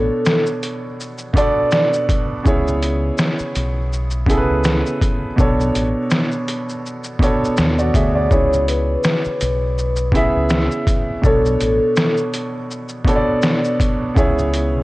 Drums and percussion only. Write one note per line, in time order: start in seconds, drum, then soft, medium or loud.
0.25 finger snap medium
0.25 snare loud
0.25 shaker medium
0.46 shaker soft
0.63 closed hi-hat medium
0.63 shaker medium
1.00 shaker soft
1.18 shaker medium
1.34 kick medium
1.34 closed hi-hat medium
1.34 shaker soft
1.71 finger snap medium
1.71 snare loud
1.71 shaker medium
1.93 shaker soft
2.09 kick medium
2.09 closed hi-hat medium
2.09 shaker medium
2.46 kick loud
2.46 shaker medium
2.68 shaker soft
2.83 closed hi-hat medium
2.83 shaker medium
3.18 finger snap medium
3.18 snare loud
3.18 shaker medium
3.39 shaker soft
3.56 closed hi-hat medium
3.56 shaker medium
3.93 shaker medium
4.11 shaker medium
4.26 kick medium
4.26 closed hi-hat medium
4.26 shaker soft
4.64 finger snap medium
4.64 snare loud
4.64 shaker medium
4.86 shaker soft
5.01 kick medium
5.01 closed hi-hat medium
5.01 shaker soft
5.38 kick loud
5.38 shaker medium
5.60 shaker soft
5.75 closed hi-hat medium
5.75 shaker medium
6.11 finger snap medium
6.11 snare loud
6.11 shaker medium
6.31 shaker soft
6.48 closed hi-hat medium
6.48 shaker medium
6.69 shaker soft
6.86 shaker soft
7.04 shaker medium
7.19 kick loud
7.19 closed hi-hat medium
7.19 shaker soft
7.45 shaker soft
7.57 finger snap medium
7.57 snare loud
7.57 shaker medium
7.79 shaker soft
7.94 kick medium
7.94 closed hi-hat medium
7.94 shaker soft
8.31 kick loud
8.31 shaker medium
8.53 shaker soft
8.68 closed hi-hat medium
8.68 shaker medium
9.03 finger snap medium
9.03 snare loud
9.03 shaker medium
9.24 shaker soft
9.41 closed hi-hat medium
9.41 shaker medium
9.78 shaker medium
9.96 shaker medium
10.12 kick loud
10.12 closed hi-hat medium
10.12 shaker soft
10.49 finger snap medium
10.49 snare loud
10.49 shaker medium
10.71 shaker soft
10.87 kick loud
10.87 closed hi-hat medium
10.87 shaker soft
11.24 kick loud
11.24 shaker medium
11.46 shaker soft
11.61 closed hi-hat medium
11.61 shaker medium
11.96 finger snap loud
11.96 snare loud
11.96 shaker medium
12.17 shaker soft
12.34 closed hi-hat medium
12.34 shaker medium
12.71 shaker medium
12.89 shaker medium
13.05 kick loud
13.05 closed hi-hat medium
13.05 shaker soft
13.42 finger snap medium
13.42 snare loud
13.42 shaker medium
13.64 shaker soft
13.80 kick medium
13.80 closed hi-hat medium
13.80 shaker soft
14.17 kick loud
14.17 shaker medium
14.39 shaker soft
14.54 closed hi-hat medium
14.54 shaker medium